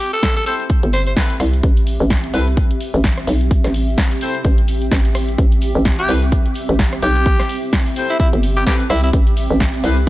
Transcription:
Already playing: C4 G4 E5
0.00 shaker
0.13 A4, shaker
0.23 kick, snare, closed hi-hat, shaker
0.36 A4, open hi-hat
0.46 C4 E4 A4 C5, open hi-hat, shaker
0.60 closed hi-hat, shaker
0.69 kick, closed hi-hat, shaker
0.83 G1, closed hi-hat
0.93 C5, open hi-hat, shaker
1.07 C5, closed hi-hat, shaker
1.17 C4 E4 A4 B4, kick, snare, closed hi-hat, shaker
1.30 closed hi-hat, shaker
1.40 C2, cross-stick, open hi-hat, shaker
1.54 closed hi-hat, shaker
1.63 A1, kick, closed hi-hat, shaker
1.77 closed hi-hat, shaker
1.87 open hi-hat, shaker
2.00 A1, shaker
2.10 kick, snare, closed hi-hat, shaker
2.24 closed hi-hat
2.34 C2 C4 E4 A4 B4, open hi-hat, shaker
2.47 closed hi-hat, shaker
2.57 kick, closed hi-hat, shaker
2.71 closed hi-hat
2.81 open hi-hat, shaker
2.94 A1, closed hi-hat, shaker
3.03 kick, snare, closed hi-hat, shaker
3.18 cross-stick, closed hi-hat, shaker
3.27 B1, open hi-hat, shaker
3.41 closed hi-hat, shaker
3.51 kick, closed hi-hat, shaker
3.64 A1, cross-stick, snare, closed hi-hat, shaker
3.74 open hi-hat, shaker
3.88 shaker
3.98 kick, snare, closed hi-hat, shaker
4.11 open hi-hat
4.21 C4 E4 A4 C5, open hi-hat, shaker
4.35 closed hi-hat, shaker
4.45 A1, kick, closed hi-hat, shaker
4.58 closed hi-hat
4.68 open hi-hat, shaker
4.82 closed hi-hat, shaker
4.91 A1, kick, snare, closed hi-hat, shaker
5.05 closed hi-hat, shaker
5.15 cross-stick, open hi-hat, shaker
5.29 closed hi-hat, shaker
5.38 A1, kick, closed hi-hat, shaker
5.52 closed hi-hat, shaker
5.61 open hi-hat, shaker
5.75 A1, shaker
5.85 kick, snare, closed hi-hat, shaker
5.99 G4, closed hi-hat
6.09 C2 C4 E4 A4 B4, open hi-hat, shaker
6.22 closed hi-hat, shaker
6.32 kick, closed hi-hat, shaker
6.46 closed hi-hat
6.55 open hi-hat, shaker
6.69 A1, closed hi-hat, shaker
6.79 kick, snare, closed hi-hat, shaker
6.93 cross-stick, closed hi-hat, shaker
7.02 B1 G4, open hi-hat, shaker
7.16 closed hi-hat, shaker
7.26 kick, closed hi-hat, shaker
7.39 cross-stick, snare, closed hi-hat, shaker
7.49 open hi-hat, shaker
7.62 shaker
7.73 kick, snare, closed hi-hat, shaker
7.86 open hi-hat
7.96 C4 E4 A4 C5, open hi-hat, shaker
8.09 E4, closed hi-hat, shaker
8.20 E4, kick, closed hi-hat, shaker
8.33 G1, closed hi-hat
8.43 open hi-hat, shaker
8.57 G4, closed hi-hat, shaker
8.67 C4 E4 G4 A4 B4, kick, snare, closed hi-hat, shaker
8.80 closed hi-hat, shaker
8.90 C2 E4, cross-stick, open hi-hat, shaker
9.03 E4, closed hi-hat, shaker
9.13 A1, kick, closed hi-hat, shaker
9.27 closed hi-hat, shaker
9.37 open hi-hat, shaker
9.50 A1, shaker
9.60 kick, snare, closed hi-hat, shaker
9.74 closed hi-hat
9.84 C2 C4 E4 A4 B4, open hi-hat, shaker
9.97 closed hi-hat, shaker

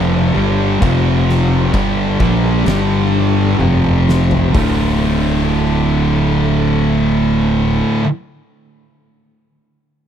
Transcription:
Already playing: F1 F2 C3 F3 G3 D4 A4
0.35 G1 G2 D3 G3
0.80 F1 F2 C3 F3 C4 G4, kick, crash
1.29 snare
1.72 G1 G2 D3 G3 D4 A4, kick, crash
2.19 A#1 A#2 F3 A#3, kick
2.66 G1 G2 D3 G3, snare, crash
3.58 F1 F2 C3 F3 C4 G4, high tom
3.84 mid tom
4.09 snare
4.31 floor tom
4.52 D1 D2 A2 D3 A3, kick, floor tom, open hi-hat
4.57 F4

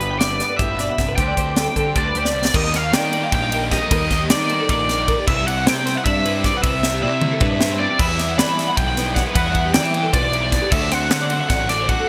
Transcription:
Already playing: G1 G2 G3 E4 G4 B4
0.00 B3 B4, closed hi-hat
0.11 G5
0.19 G3 D5 E5, snare, closed hi-hat
0.31 B4
0.40 B3 D5, snare, closed hi-hat
0.50 B4
0.57 G1 A2 G4 E5, kick, closed hi-hat
0.70 B4
0.78 B2 D5, snare, closed hi-hat
0.89 F#5
0.98 G1 C3 E5, kick, snare, closed hi-hat
1.08 B4
1.16 D2 D3 G3 C4 D4 C5 G5, kick, closed hi-hat
1.20 G4
1.28 D5
1.37 D2 C4 C5, kick, closed hi-hat
1.46 B4
1.56 G3 A4, snare, closed hi-hat
1.67 B4
1.76 D3 C4 A4, kick, closed hi-hat
1.86 G4
1.96 D2 D4 A4 D5, kick, closed hi-hat
2.06 B4
2.15 D2 G4 C5, closed hi-hat
2.25 D5, snare
2.34 C2 C5
2.44 D5, snare
2.54 D#2 D#3 G3 A#3 D#4 A#4 D#5, kick, crash
2.64 D#5
2.74 G3 A#3 D#4 D5 F5, snare, ride
2.84 F5
2.92 D#3 G3 A#3 D#4 D5 G5, snare, ride
3.03 D#5
3.13 D5, ride
3.23 F5
3.32 A#1 D#5 G5, kick, ride
3.42 F5
3.52 G3 A#3 D#4 A#4, ride
3.62 D5
3.71 D#3 G3 A#3 D#4 G4 D#5, kick, snare, ride
3.82 A#4
3.90 D#2 D#3 G3 A#3 D#4 A#4 D#5, kick, ride
4.02 D#5
4.10 G3 A#3 D#4 D#5, kick, snare, ride
4.21 G4
4.29 D#3 G3 A#3 D#4 D5, snare, ride
4.40 D#5
4.49 C5, ride
4.60 A4
4.69 A#1 A#4 D5, kick, ride
4.80 D5
4.88 G3 A#3 D#4 A#4, snare, ride
4.99 C5
5.08 D#3 G3 A#3 D#4 A#4, kick, ride
5.18 G4
5.27 C2 C3 G3 C4 E4 B4 E5, kick, crash
5.37 E5
5.47 G3 C4 E4 D5 F#5, ride
5.57 E5
5.66 C3 G3 C4 E4 C5 G5, snare, ride
5.76 D5
5.86 C5, snare, ride
5.95 E5 F#5
6.05 G2 D5 E5, kick, ride
6.16 E5
6.25 G3 C4 E4 B4, ride
6.34 D5
6.44 C3 G3 C4 E4 G4 D5, kick, snare, ride
6.53 B4 F#5
6.63 C2 C3 G3 C4 E4 B4 E5, kick, ride
6.73 E5
6.83 G3 C4 E4 E5, snare
6.93 G4
7.02 C3 G3 C4 E4 D5 E5
7.12 E5
7.21 C5, mid tom
7.32 A4
7.40 G2 B4, kick, mid tom
7.51 D5
7.60 G3 C4 E4 B4, snare
7.70 C5
7.79 C3 G3 C4 E4 B4 D5
7.90 G4
7.99 E2 E3 G3 B3 E4 B4 E5, kick, crash
8.09 E5
8.18 G3 B3 E4 D5, snare, ride
8.28 F#5
8.38 E3 G3 B3 E4 D5 B5, snare, ride
8.48 E5
8.58 D5, snare, ride
8.67 F#5
8.77 B1 E5 G5, kick, ride
8.88 F#5
8.97 G3 B3 E4 B4, snare, ride
9.06 D5
9.15 E3 G3 B3 E4 G4 F#5, kick, snare, ride
9.27 B4
9.35 E2 E3 G3 B3 E4 B4 F#5, kick, ride
9.46 E5
9.55 G3 B3 E4 E5, kick, ride
9.65 G4
9.74 E3 G3 B3 E4 D5 G5, snare, ride
9.85 E5
9.94 C5, ride
10.03 A4
10.13 B1 B4 D5, kick, ride
10.23 D5
10.32 G3 B3 E4 B4, ride
10.42 C5
10.51 E3 G3 B3 E4 B4, kick, snare, ride
10.62 G4
10.71 D2 D3 A3 C4 F#4 A4 E5, kick, crash
10.81 D5
10.91 A3 C4 F#4 C5 F#5, snare, ride
11.01 E5
11.11 D3 A3 C4 F#4 C5, snare, ride
11.21 D5
11.30 C5, ride
11.40 E5
11.49 A1 D5 F#5, kick, snare, ride
11.60 E5
11.68 A3 C4 F#4 A4 D5, snare, ride
11.80 C5
11.88 D3 A3 C4 F#4 F#5, kick, ride
12.00 A4

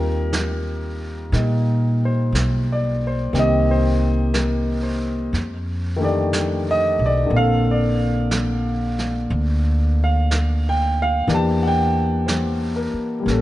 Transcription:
Already playing: D#2 D#3 G3 C4 F4 G4 A#4
0.33 brush sweep, snare, hi-hat pedal
1.32 A#2 G3 A#3 D#4, brush sweep, snare
2.05 C5
2.32 B1, brush sweep, snare, hi-hat pedal
2.72 D5
3.07 C5
3.33 C2 D#3 A#3 C4 G4, brush sweep, snare
3.39 D#5
3.71 C5
4.34 A#4, brush sweep, snare, hi-hat pedal
4.83 C5
5.33 F2, brush sweep, snare
5.96 D#3 A3
6.01 D3 G4 D5
6.33 brush sweep, snare, hi-hat pedal
6.71 D#5
6.99 B1
7.06 D5
7.26 D3 A#3
7.30 A#1 C4, brush sweep
7.37 A4 F5
7.71 D5
8.31 brush sweep, snare, hi-hat pedal
8.99 snare
9.30 D2, brush sweep
10.04 F5
10.31 brush sweep, snare, hi-hat pedal
10.69 G5
11.02 F5
11.27 E2 E3 A#3 D4 G4, brush sweep, snare
11.34 A5
11.63 F#5
11.68 G5
12.27 C5, brush sweep, snare, hi-hat pedal
12.76 A#4
12.94 muted upright bass stroke
13.20 G3 A#3
13.26 A1 C#4, brush sweep, snare
13.30 A4

